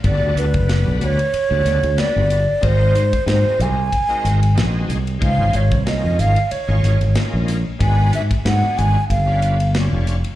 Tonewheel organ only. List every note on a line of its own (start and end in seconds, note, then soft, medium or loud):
0.03 0.45 G3 medium
0.03 0.46 B3 medium
0.03 0.46 D4 medium
0.03 0.46 F#4 medium
0.03 0.46 A4 medium
0.67 1.20 G3 medium
0.67 1.21 B3 medium
0.67 1.21 D4 medium
0.67 1.21 F#4 medium
0.67 1.21 B4 medium
1.49 1.81 G3 medium
1.49 1.81 B3 medium
1.49 1.81 D4 medium
1.49 1.81 F#4 medium
1.49 1.81 A4 medium
1.97 2.39 G3 medium
1.97 2.39 B3 medium
1.97 2.40 D4 medium
1.97 2.40 F#4 medium
1.97 2.40 B4 medium
2.61 3.04 G#3 medium
2.61 3.04 C4 medium
2.61 3.04 D#4 medium
2.61 3.04 F#4 medium
2.61 3.04 A#4 medium
3.26 3.79 G#3 medium
3.26 3.79 C4 medium
3.26 3.80 D#4 medium
3.26 3.80 F#4 soft
3.26 3.80 A#4 medium
4.08 4.40 G#3 medium
4.08 4.40 C4 medium
4.08 4.40 D#4 medium
4.08 4.40 F#4 soft
4.08 4.40 A#4 medium
4.55 4.98 G#3 medium
4.55 4.98 C4 medium
4.55 4.98 D#4 medium
4.55 4.98 F#4 medium
4.55 4.98 G#4 medium
5.19 5.62 G#3 medium
5.19 5.62 C#4 medium
5.19 5.63 D#4 medium
5.19 5.63 F4 medium
5.19 5.63 C5 medium
5.85 6.38 G#3 medium
5.85 6.38 C#4 medium
5.85 6.39 D#4 soft
5.85 6.39 F4 medium
5.85 6.39 A#4 medium
6.68 6.99 G#3 medium
6.68 6.99 C#4 medium
6.68 6.99 D#4 medium
6.68 6.99 F4 medium
6.68 6.99 C#5 medium
7.15 7.57 G#3 medium
7.15 7.58 C#4 medium
7.15 7.58 D#4 medium
7.15 7.58 F4 medium
7.15 7.58 A#4 medium
7.79 8.22 G#3 medium
7.79 8.22 B3 medium
7.79 8.22 D4 medium
7.79 8.22 F#4 medium
7.79 8.23 B4 medium
8.44 8.97 G#3 medium
8.44 8.97 B3 soft
8.44 8.98 D4 soft
8.44 8.98 F#4 medium
8.44 8.98 G#4 medium
9.26 9.58 G3 medium
9.26 9.58 C#4 medium
9.26 9.58 D4 medium
9.26 9.58 F4 medium
9.26 9.58 B4 medium
9.74 10.16 G3 medium
9.74 10.16 C#4 medium
9.74 10.17 D4 medium
9.74 10.17 F4 medium
9.74 10.17 C#5 medium